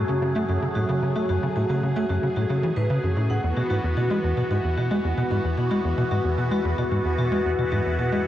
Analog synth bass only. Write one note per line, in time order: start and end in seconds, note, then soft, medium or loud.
0.09 0.21 C#3 loud
0.22 0.35 C#3 medium
0.36 0.45 A3 loud
0.49 0.58 F#2 medium
0.62 0.68 C#3 medium
0.76 0.85 A2 medium
0.89 1.02 C#3 loud
1.02 1.15 C#3 medium
1.16 1.25 A3 medium
1.29 1.38 F#2 loud
1.43 1.48 C#3 medium
1.56 1.65 A2 medium
1.70 1.82 C#3 medium
1.83 1.96 C#3 medium
1.96 2.05 A3 loud
2.10 2.19 F#2 loud
2.23 2.28 C#3 medium
2.36 2.46 A2 medium
2.50 2.62 C#3 medium
2.63 2.72 E3 loud
2.77 2.89 A2 loud
2.90 2.99 C#3 loud
3.03 3.16 F#2 medium
3.17 3.29 A2 loud
3.30 3.39 A2 medium
3.44 3.53 E2 medium
3.57 3.62 B2 medium
3.70 3.80 G#2 medium
3.84 3.96 E2 medium
3.97 4.10 B2 medium
4.10 4.20 G#3 loud
4.24 4.33 E2 loud
4.37 4.43 B2 medium
4.50 4.60 G#2 medium
4.64 4.77 E2 medium
4.77 4.90 B2 medium
4.91 5.00 G#3 loud
5.04 5.13 E2 loud
5.18 5.23 B2 loud
5.31 5.40 G#2 medium
5.44 5.57 E2 medium
5.58 5.70 B2 medium
5.71 5.80 G#3 medium
5.85 5.94 E2 loud
5.98 6.03 B2 loud
6.11 6.20 G#2 medium
6.25 6.37 E2 medium
6.38 6.51 B2 medium
6.51 6.61 G#3 medium
6.65 6.74 E2 loud
6.78 6.84 B2 loud
6.91 7.01 G#2 medium
7.05 7.18 E2 medium
7.18 7.31 B2 medium
7.32 7.41 G#3 loud
7.45 7.54 E2 loud
7.58 7.64 B2 medium
7.72 7.81 G#2 medium
7.85 7.98 E2 medium
7.99 8.11 B2 medium
8.12 8.21 G#3 loud